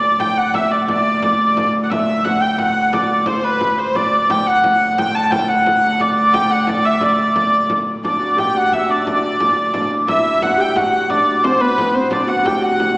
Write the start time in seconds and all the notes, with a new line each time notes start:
Already playing: D2 D5
0.20 G5, frame drum
0.37 F#5
0.54 E5, frame drum
0.71 D5
0.87 D5, frame drum
1.22 frame drum
1.57 frame drum
1.83 F#5
1.90 E5, frame drum
2.25 F#5, frame drum
2.41 G5
2.58 F#5, frame drum
2.93 D5, frame drum
3.10 frame drum
3.26 C5, frame drum
3.44 B4
3.61 frame drum
3.78 C5, frame drum
3.94 D2 D5, frame drum
4.30 G5, frame drum
4.47 F#5
4.64 frame drum
4.98 G5, frame drum
5.15 A5
5.31 G5, frame drum
5.49 F#5
5.66 frame drum
5.84 F#5
5.99 D5, frame drum
6.34 G5, frame drum
6.50 F#5
6.67 D5, frame drum
6.85 E5
7.01 D5, frame drum
7.19 frame drum
7.36 frame drum
7.70 frame drum
8.03 D2 D4 D5, frame drum
8.20 F#4
8.36 G4 G5, frame drum
8.54 F#4 F#5
8.72 E5, frame drum
8.88 D4 D5
9.05 D4 D5, frame drum
9.40 frame drum
9.74 D4, frame drum
10.08 E4 E5, frame drum
10.41 F#4 F#5, frame drum
10.57 G4 G5
10.76 F#4 F#5, frame drum
11.10 D4 D5, frame drum
11.28 frame drum
11.43 C4 C5, frame drum
11.61 B3 B4, frame drum
11.78 frame drum
11.94 C4 C5, frame drum
12.10 D2 D4 D5, frame drum
12.26 F#4 F#5
12.44 G4 G5, frame drum
12.61 F#4 F#5
12.80 frame drum